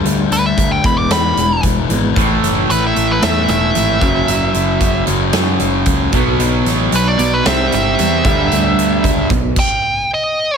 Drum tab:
CC |--------|--------|--------|--------|
HH |xxxxxxxx|xxxxxxxx|xxxxxxxx|xxxxxxxx|
SD |----o---|-o--o---|----o---|-o--o---|
BD |--oo--o-|o------o|--o---oo|-------o|

CC |----x---|
HH |xxxx----|
SD |--------|
BD |--ooo---|